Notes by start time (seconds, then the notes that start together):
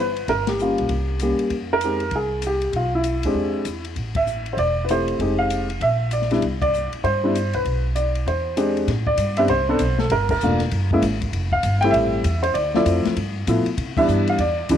Already playing: G1 B4
0.16 ride
0.28 G1 A#4, kick, snare, ride
0.47 G4, snare, ride
0.59 G3 A#3 C#4 F4, hi-hat pedal
0.78 B1, ride
0.89 C2, kick, ride
1.19 G3 A#3 C#4 G4, hi-hat pedal, ride
1.39 muted upright bass stroke, ride
1.50 F2, kick, ride
1.73 A#4
1.81 G#3 C4 D#4, hi-hat pedal, ride
1.85 G4
2.00 ride
2.11 C2, kick, ride
2.15 G#4
2.42 hi-hat pedal, ride
2.47 G4
2.62 ride
2.73 B1 F4, kick, ride
2.95 E4
3.04 hi-hat pedal, ride
3.23 D2 G#3 C4 D4 G4, ride
3.34 E2, kick
3.65 E2, hi-hat pedal, ride
3.85 ride
3.96 A1, kick, ride
4.15 E5, kick, ride
4.26 hi-hat pedal
4.46 ride
4.53 E1 C5
4.57 D5, kick, ride
4.85 B4
4.89 A3 C4 E4 G4 C5, hi-hat pedal, ride
5.08 ride
5.19 F1 G#3 C4 D#4 G4, kick, ride
5.39 F5
5.50 hi-hat pedal, ride
5.70 ride
5.81 A#1 E5, kick, ride
6.11 D5, hi-hat pedal, ride
6.22 snare
6.31 G3 B3 D4 E4, snare, ride
6.42 C2, kick, ride
6.62 D5, kick, ride
6.73 hi-hat pedal
6.93 muted upright bass stroke, ride
7.04 G2 C5, kick, ride
7.23 G3 B3 D4 E4
7.35 hi-hat pedal, ride
7.53 C2 B4, ride
7.65 B1, kick, ride
7.95 D5, hi-hat pedal, ride
8.15 ride
8.26 E2 C5, kick, ride
8.57 G#3 C4 D4 G4, hi-hat pedal, ride
8.77 ride
8.87 A2, kick, snare, ride
9.07 D5, kick
9.17 G2, kick, hi-hat pedal, ride
9.37 B3 C4 D4 G4 E5, ride
9.48 C2 C5, kick, ride
9.69 B3 C4 D4 A4
9.79 B1, kick, hi-hat pedal, ride
9.99 A4, snare
10.10 G1 A#4, kick, ride
10.29 A#4, kick, crash
10.41 E1 A3 A#3 D4 F4, hi-hat pedal
10.60 snare, ride
10.71 F#1, kick, ride
10.91 G#3 A#3 C#4 E4, kick
11.02 G#1, kick, hi-hat pedal, ride
11.21 kick, ride
11.33 F1, kick, ride
11.52 F5, kick
11.63 G1, kick, hi-hat pedal, ride
11.81 G3 A3 C4 E4 G5, ride
11.91 A1 E5, kick, ride
12.24 E2, kick, hi-hat pedal, ride
12.43 C5, ride
12.54 D2 D5, kick, ride
12.74 F3 A3 C4 E4 D5, snare
12.85 F2, kick, hi-hat pedal, ride
13.05 muted upright bass stroke, snare, ride
13.16 G2, kick, ride
13.47 A2 F3 A3 B3 E4, kick, hi-hat pedal, ride
13.66 muted upright bass stroke, ride
13.77 C3, kick, ride
13.97 E3 G3 B3 D4 E5, kick, crash
14.08 G2, hi-hat pedal
14.27 F5, ride
14.38 E2 D5, kick, ride
14.69 D2 E3 G3 B3 D4, kick, hi-hat pedal, ride